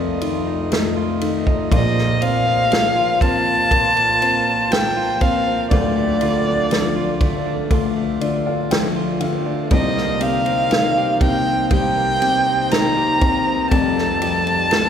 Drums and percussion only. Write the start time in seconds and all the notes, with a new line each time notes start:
0.21 ride
0.72 snare, ride
1.21 ride
1.47 kick
1.72 kick, ride
1.98 snare
2.22 ride
2.72 snare, ride
3.21 kick, ride
3.71 kick, ride
3.97 ride
4.22 ride
4.72 snare, ride
5.21 kick, ride
5.71 kick, ride
6.21 ride
6.71 snare, ride
7.21 kick, ride
7.71 kick, ride
8.21 ride
8.71 snare, ride
9.21 ride
9.71 kick, ride
9.98 snare
10.21 ride
10.46 ride
10.71 snare, ride
11.21 kick, ride
11.71 kick, ride
12.22 ride
12.71 snare, ride
13.21 kick, ride
13.71 kick, ride
13.98 snare
14.22 ride
14.47 ride
14.71 snare, ride